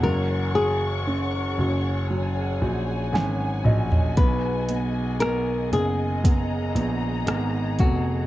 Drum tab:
HH |----------------|x-x-x-x-x-x-x-x-|
SD |------------o---|----r-------r-r-|
T2 |--------------o-|----------------|
FT |---------------o|----------------|
BD |----------------|o-------o-----o-|